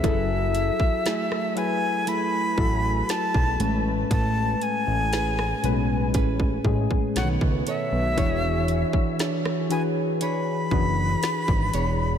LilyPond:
<<
  \new Staff \with { instrumentName = "Flute" } { \time 4/4 \key fis \minor \tempo 4 = 59 e''4. gis''8 b''4 a''8. r16 | a''8 gis''4. r4 fis''8 e''8~ | e''4 r8 gis''8 b''2 | }
  \new Staff \with { instrumentName = "Nylon-string guitar" } { \time 4/4 \key fis \minor <fis gis'>4 <a e' gis'>4 <a e'>4. a8 | <a b'>4 <cis' gis' b'>4 <cis' gis' b'>4 b8 <a' cis''>8 | <e cis''>4 <d' gis' cis''>4 <d' gis' cis''>4. <d' gis' cis''>8 | }
  \new Staff \with { instrumentName = "Synth keys" } { \time 4/4 \key fis \minor <fis e' gis' a'>4 r8 <fis e' gis' b'>8. r16 <fis e' fis' a'>4 <a, gis cis' b'>8~ | <a, gis cis' b'>4 r8 <a, gis cis' b'>8. r16 <a, gis cis' gis'>8 <b, dis a cis' cis''>4 | <e d' fis' gis' cis''>4 r8 <e d' fis' gis' b'>8. r16 <e d' fis' gis' b'>4. | }
  \new Staff \with { instrumentName = "Analog synth bass" } { \clef bass \time 4/4 \key fis \minor fis,,8. r4. r16 a,,8 r16 b,,16 a,,8 | a,,8 r16 a,,8. b,,8 a,,8 a,,16 r16 b,,16 cis,16 r16 b,,16 | e,,8. r4. r16 fis,,8 r16 gis,,16 e,,8 | }
  \new DrumStaff \with { instrumentName = "Drums" } \drummode { \time 4/4 <hh bd>8 hh16 bd16 <hh sn>16 ss16 hh8 hh8 bd8 <hh sn>16 bd16 hh8 | <hh bd>8 hh8 <hh sn>16 ss16 hh8 <hh bd>16 bd16 bd16 bd16 <hh sn>16 bd16 hh8 | <hh bd>8 hh16 bd16 <hh sn>16 ss16 hh8 hh8 bd8 <hh sn>16 bd16 hh8 | }
>>